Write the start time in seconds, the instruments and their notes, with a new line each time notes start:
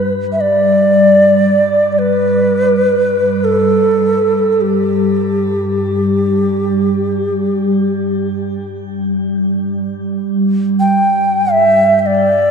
Already playing: ambient pad G2 G3, native american-style wooden flute B4
0.32 native american-style wooden flute E5
0.41 native american-style wooden flute D5
1.92 native american-style wooden flute D5
1.99 native american-style wooden flute B4
3.44 native american-style wooden flute A4
4.52 native american-style wooden flute A4
4.61 native american-style wooden flute G4
5.47 ambient pad G2 G3
10.80 native american-style wooden flute G5
11.53 native american-style wooden flute E5
11.99 native american-style wooden flute E5
12.06 native american-style wooden flute D5